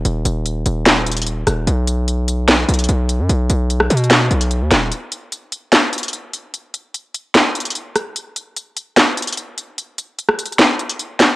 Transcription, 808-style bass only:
X:1
M:4/4
L:1/16
Q:1/4=148
K:Cblyd
V:1 name="808-style bass" clef=bass
E,,,2 E,,,4 E,,,8 E,,,2 | =B,,,8- B,,,2 B,,,2 B,,,3 ^F,, | =B,,,2 B,,,4 =B,,4 B,,,3 ^D,, ^D,,,2 | z16 |
z16 | z16 | z16 |]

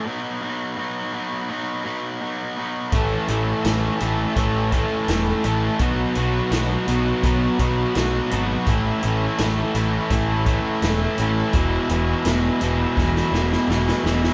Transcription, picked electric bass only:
X:1
M:4/4
L:1/8
Q:1/4=84
K:Alyd
V:1 name="Picked electric bass" clef=bass
z8 | A,,, A,,, A,,, A,,, A,,,2 E,,, A,,, | B,,, B,,, B,,, B,,, B,,, B,,, B,,, G,,, | A,,, A,,, A,,, A,,, A,,,2 E,,, A,,, |
E,,, E,,, E,,, E,,, E,,, E,,, E,,, E,,, |]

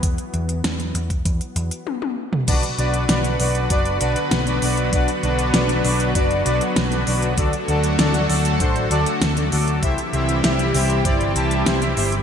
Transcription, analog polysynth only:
X:1
M:4/4
L:1/16
Q:1/4=98
K:Bphr
V:1 name="Analog polysynth"
z16 | [DFBd] z [DFBd]2 [DFBd]2 [DFBd]2 [DFBd]2 [DFBd] z2 [DFBd] [DFBd]2 | [DFBd] z [DFBd]2 [DFBd]2 [DFBd]2 [DFBd]2 [DFBd] z2 [DFBd] [DFBd]2 | [DFAd] z [DFAd]2 [DFAd]2 [DFAd]2 [DFAc]2 [DFAd] z2 [DFAd] [DFAd]2 |
[EGce] z [EGce]2 [EGce]2 [EGce]2 [EGcd]2 [EGca]2 [EGce] [EGce] [EGce] z |]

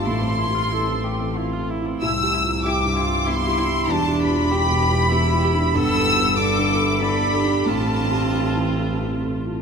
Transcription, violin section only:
X:1
M:3/4
L:1/8
Q:1/4=94
K:Flyd
V:1 name="Violin section"
c'4 z2 | e'2 d'2 c'2 | a b4- b | e'2 d'2 b2 |
a4 z2 |]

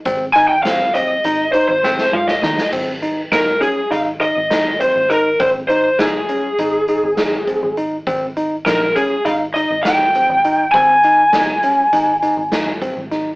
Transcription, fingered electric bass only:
X:1
M:9/8
L:1/16
Q:3/8=67
K:Ab
V:1 name="Fingered electric bass" clef=bass
A,,,2 A,,,6 A,,,2 z A,,,2 z A,,2 E,, z | A,,,4 G,,,2 z2 A,,,3 A,,,4 A,,,3 | A,,,4 G,,,2 z2 A,,,3 A,,,4 A,,,3 | A,,,4 B,,,2 z2 A,,,3 A,,,4 A,,,3 |
A,,,4 G,,,2 z2 A,,,3 A,,,4 A,,,3 |]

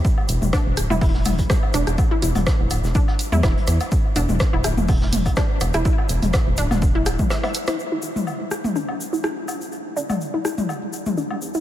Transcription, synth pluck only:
X:1
M:4/4
L:1/16
Q:"Swing 16ths" 1/4=124
K:C
V:1 name="Synth pluck"
z4 D z2 E E z4 z D z | z E E z4 z D z2 E E z3 | z2 D z2 E E z4 z D z2 E | E z4 z D z2 E z2 e E z E |
z E E z4 z D z2 E E z3 | z2 D z2 E E z4 z D z2 E |]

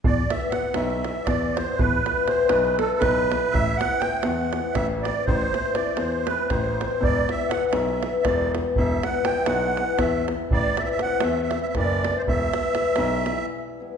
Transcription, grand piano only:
X:1
M:7/8
L:1/8
Q:1/4=120
K:Em
V:1 name="Grand piano" clef=bass
E,, z2 B,,,2 E,,2 | E,, z2 B,,,2 B,,,2 | A,,, z2 E,,2 A,,,2 | A,,, z2 E,,2 A,,,2 |
E,,, z2 B,,,2 E,,,2 | E,,, z2 B,,,2 E,,2 | A,,, z2 E,,2 F,,,2 | E,,, z2 B,,,2 z2 |]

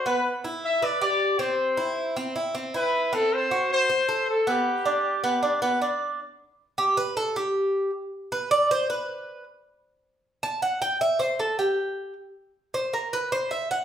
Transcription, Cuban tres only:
X:1
M:4/4
L:1/8
Q:1/4=156
K:G
V:1 name="Cuban tres"
B,2 E2 B G2 C- | C E2 C E C E2 | C2 F2 c A2 B,- | B, D2 B, D B, D2 |
z3 G B A G2- | G z2 B d c B2- | B z4 z a f | g e c A G3 z |
z2 c _B =B c e f |]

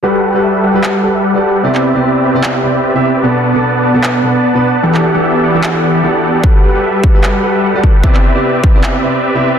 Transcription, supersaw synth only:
X:1
M:4/4
L:1/16
Q:"Swing 16ths" 1/4=150
K:G
V:1 name="Supersaw synth"
[G,GABf]2 [G,GABf] [G,GABf] [G,GABe]2 [G,GABf] [G,GABe] [G,GABf]2 [G,GABf] [G,GABe] [G,GABf]2 [G,GABf] [G,GABf] | [CGBde]2 [CGBde] [CGBde] [CGBde]2 [CGBde] [CGBde] G2 [CGBde] [CGBde] [CGBde]2 [CGBde] [CGBde] | [B,Bdfa]2 [B,Bdfa] [B,Bdfa] [B,Bdfa]2 [B,Bdfa] [B,Bdfa] [B,Bdf]2 [B,Bdfa] [B,Bdfa] [B,Bdfa]2 [B,Bdfa] [B,Bdfa] | [E,B,GAdf]2 [E,B,GAdf] [E,B,GAdf] [E,B,GAde]2 [E,B,GAdf] [E,B,GAde] [E,B,GAf]2 [E,B,GAdf] [E,B,GAde] [E,B,GAdf]2 [E,B,GAdf] [E,B,GAdf] |
G,2 [G,GABf] [G,GABf] [G,GABe]2 z [G,GABe] [G,GABf]2 [G,GABf] [G,GABe] [G,GABf]2 [G,GABf] [G,GABf] | [CGBde]2 [CGBde] [CGBde] [CGBde]2 z [CGBde] [CGBde]2 [CGBde] [CGBde] [CGBde]2 [CGBde] [CGBde] |]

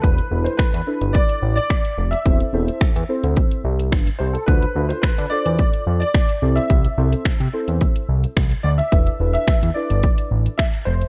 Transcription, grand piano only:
X:1
M:4/4
L:1/16
Q:1/4=108
K:Am
V:1 name="Grand piano"
B3 c B4 d3 d4 e- | e8- e3 z3 c A | B3 c B2 d4- d d4 e- | e8- e3 z3 d e- |
e3 e3 d4 z2 e2 c2 |]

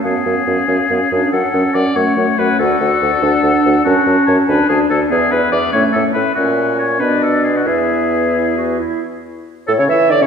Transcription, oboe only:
X:1
M:6/8
L:1/16
Q:3/8=94
K:Dlyd
V:1 name="Oboe"
G12 | A4 d2 c4 B2 | A12 | [K:A] F4 c2 B2 G2 A2 |
G2 B2 d2 c2 A2 B2 | F4 c2 B2 A2 G F | G8- G2 z2 | z6 A c e2 d c |]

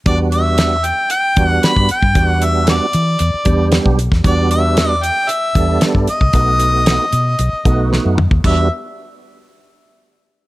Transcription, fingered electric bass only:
X:1
M:4/4
L:1/16
Q:1/4=115
K:Em
V:1 name="Fingered electric bass" clef=bass
E,,8 z2 E,,2 z G,, z G,, | E,,6 E,2 E,, z E,,3 B,,,2 E,, | E,,8 z2 E,,2 z G,, z C,, | B,,,6 B,,2 B,,, z B,,,3 F,,2 ^D,, |
E,,2 z12 z2 |]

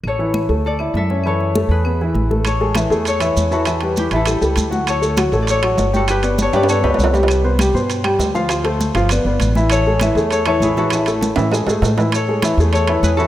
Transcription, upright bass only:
X:1
M:4/4
L:1/8
Q:1/4=199
K:A
V:1 name="Upright bass" clef=bass
A,,,3 D,,3 F,,2- | F,,3 E,,3 A,,,2- | A,,,3 E,,3 E,,2- | E,,3 A,,,2 C,, D,,2- |
D,,3 A,,,3 =G,,,2- | =G,,,3 =G,,2 C,, =C,,2- | =C,,3 =G,,3 D,,2- | D,,3 =G,,,2 G,,, A,,,2- |
A,,,3 E,,3 A,,,2- | A,,,3 A,,2 G,, A,,2- | A,,3 E,,3 E,,2 |]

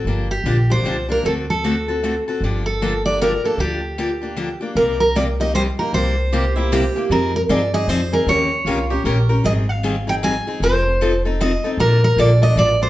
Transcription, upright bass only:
X:1
M:3/4
L:1/8
Q:"Swing" 1/4=154
K:Gm
V:1 name="Upright bass" clef=bass
G,,,2 B,,,2 C,,2 | D,,6 | G,,,6 | D,,6 |
[K:Cm] C,,6 | C,,6 | F,,2 G,,2 F,,2 | E,,2 C,,2 B,,,2 |
A,,,6 | F,,,6 | B,,,2 B,,,2 =A,,,2 |]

